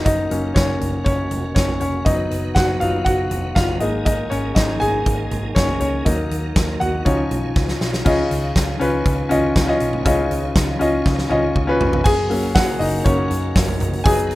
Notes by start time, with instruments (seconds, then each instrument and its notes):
Already playing: tonewheel organ F#4
0.05 picked electric bass F#1, tonewheel organ C#3 A#3, grand piano D#4 D#5, kick, closed hi-hat
0.31 picked electric bass F#1, grand piano F#3 A#3 C#4, closed hi-hat
0.54 picked electric bass F#1, grand piano C#4 C#5, kick, snare, closed hi-hat
0.81 picked electric bass F#1, closed hi-hat, floor tom
1.04 picked electric bass F#1, grand piano C#4 C#5, kick, closed hi-hat
1.31 picked electric bass F1, closed hi-hat, floor tom
1.55 picked electric bass F#1, grand piano C#4 C#5, kick, snare, closed hi-hat
1.69 floor tom
1.80 picked electric bass F1, grand piano C#4 C#5, closed hi-hat
2.05 picked electric bass F#1, tonewheel organ D#3 B3, grand piano F#3 B3 D#4 D#5, kick, closed hi-hat
2.31 picked electric bass F#1, closed hi-hat
2.55 picked electric bass F#1, grand piano F#4 F#5, kick, snare, closed hi-hat
2.80 picked electric bass F#1, grand piano F#3 B3 D#4 F4 F5, closed hi-hat, floor tom
3.05 picked electric bass F#1, grand piano F#4 F#5, kick, closed hi-hat
3.31 picked electric bass F1, closed hi-hat, floor tom
3.55 picked electric bass F#1, grand piano F4 F5, kick, snare, closed hi-hat
3.69 floor tom
3.80 picked electric bass G#1, grand piano G#3 A#3 D#4 D#5, tonewheel organ A#3 G#4, closed hi-hat
4.05 grand piano D#4 D#5, kick, closed hi-hat
4.30 picked electric bass G#1, grand piano C#4 C#5, closed hi-hat
4.55 picked electric bass G#1, grand piano D#4 D#5, kick, snare, closed hi-hat
4.80 picked electric bass G#1, grand piano G#4 G#5, closed hi-hat, floor tom
5.06 picked electric bass G#1, kick, closed hi-hat
5.31 picked electric bass G#1, closed hi-hat, floor tom
5.55 picked electric bass F#1, grand piano C#4 C#5, kick, snare, closed hi-hat
5.69 floor tom
5.80 picked electric bass C#2, grand piano C#4 C#5, closed hi-hat
6.05 picked electric bass D#2, grand piano F#3 A#3 D#4 D#5, tonewheel organ F#4, kick, closed hi-hat
6.31 picked electric bass D#2, closed hi-hat
6.56 picked electric bass D#2, kick, snare, closed hi-hat
6.80 picked electric bass D#2, grand piano F#4 F#5, closed hi-hat, floor tom
7.05 picked electric bass C#2, grand piano F3 C#4 D#4 C#5, tonewheel organ C#4 F4, kick, closed hi-hat
7.31 picked electric bass B1, closed hi-hat, floor tom
7.56 picked electric bass C#2, kick, snare
7.68 snare
7.81 picked electric bass B1, snare
7.93 snare
8.05 picked electric bass C#2, grand piano C#3 C#4 F4 D#5, tonewheel organ D#3 C#4 F4, kick, crash
8.31 picked electric bass C#2, closed hi-hat
8.56 picked electric bass C#2, kick, snare, closed hi-hat
8.80 picked electric bass C#2, grand piano C#4 F4 B4, closed hi-hat
9.06 picked electric bass C#2, kick, closed hi-hat
9.29 picked electric bass C#2, grand piano C#4 F4 D#5, closed hi-hat, floor tom
9.56 picked electric bass C#2, kick, snare, closed hi-hat
9.67 grand piano C#4 F4 D#5
9.80 picked electric bass B1, closed hi-hat
9.93 floor tom
10.05 picked electric bass C#2, grand piano C#3 C#4 F4 D#5, kick, closed hi-hat
10.31 picked electric bass C#2, closed hi-hat
10.56 picked electric bass C#2, kick, snare, closed hi-hat
10.79 picked electric bass C#2, grand piano C#4 F4 D#5, closed hi-hat
11.06 picked electric bass C#2, kick, snare
11.18 snare
11.30 picked electric bass C#2, grand piano C#4 F4 D#5, high tom
11.56 picked electric bass C#2, kick
11.67 grand piano C#4 F4 B4
11.81 picked electric bass F1, floor tom
11.93 floor tom
12.04 picked electric bass F#1, tonewheel organ C#3 A#3 F#4, grand piano G#4 G#5, kick, crash
12.30 grand piano F#3 A#3 C#4, hi-hat pedal, open hi-hat
12.55 grand piano F#4 F#5, kick, snare, hi-hat pedal, open hi-hat
12.79 picked electric bass F#1, grand piano D#4 D#5, hi-hat pedal, open hi-hat
13.04 picked electric bass F#1, grand piano F#3 A#3 C#4 C#5, kick, hi-hat pedal, open hi-hat
13.31 picked electric bass F#2, hi-hat pedal, open hi-hat
13.56 picked electric bass F#1, kick, snare, hi-hat pedal, open hi-hat
13.68 floor tom
13.80 picked electric bass F#1, floor tom, hi-hat pedal, open hi-hat
13.93 open hi-hat
14.04 picked electric bass F#1, tonewheel organ D#3 B3 F#4, grand piano F#3 B3 D#4 G#4 G#5, kick, hi-hat pedal, open hi-hat
14.18 hi-hat pedal
14.30 hi-hat pedal, open hi-hat